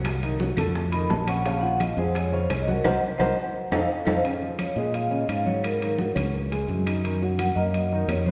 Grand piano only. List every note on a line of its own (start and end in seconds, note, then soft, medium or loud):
0.00 0.16 F#3 medium
0.00 0.16 F#4 medium
0.00 0.17 F#5 medium
0.23 0.37 D#3 medium
0.23 0.38 D#4 medium
0.23 0.38 D#5 medium
0.40 0.54 F#3 medium
0.40 0.55 F#4 medium
0.40 0.55 F#5 medium
0.58 0.86 A3 medium
0.58 0.87 A4 medium
0.58 0.87 A5 medium
0.93 1.22 D#3 medium
0.93 1.22 D#4 medium
0.93 1.22 D#5 medium
1.28 1.42 C#4 medium
1.28 1.42 C#5 medium
1.28 1.43 C#6 medium
1.46 1.60 C#3 medium
1.46 1.60 C#4 medium
1.46 1.60 C#5 medium
1.62 1.91 F3 medium
1.62 1.91 F4 medium
1.62 1.92 F5 medium
1.97 2.26 G#3 medium
1.97 2.26 G#4 medium
1.97 2.27 G#5 medium
2.32 2.61 C#3 medium
2.32 2.61 C#4 medium
2.32 2.62 C#5 medium
2.67 2.82 F#3 medium
2.67 2.82 F#4 medium
2.67 2.82 F#5 medium
2.85 2.96 F#4 medium
2.85 2.96 A#4 medium
2.85 2.96 C5 medium
3.19 3.31 F#4 medium
3.19 3.31 A#4 medium
3.19 3.31 C5 loud
3.72 3.83 D#4 loud
3.72 3.83 F4 medium
3.72 3.83 A4 medium
4.05 4.17 D#4 medium
4.05 4.17 F4 loud
4.05 4.17 A4 medium
4.23 4.38 C#3 medium
4.23 4.38 C#4 medium
4.42 4.71 F3 medium
4.42 4.71 F4 medium
4.77 5.05 G#3 medium
4.77 5.06 G#4 medium
5.11 5.40 C#3 medium
5.11 5.40 C#4 medium
5.46 5.75 F#3 medium
5.46 5.75 F#4 medium
5.81 5.96 D#3 medium
5.81 5.96 D#4 medium
5.99 6.13 F#3 medium
5.99 6.13 F#4 medium
6.15 6.44 C#4 medium
6.15 6.45 C#5 medium
6.51 6.80 G#3 medium
6.51 6.80 G#4 medium
6.86 7.01 D#4 medium
6.86 7.01 D#5 medium
7.04 7.18 D#3 medium
7.04 7.19 D#4 medium
7.22 7.51 F#3 medium
7.22 7.51 F#4 medium
7.57 7.85 A#3 medium
7.57 7.85 A#4 medium
7.92 8.21 D#3 medium
7.92 8.21 D#4 medium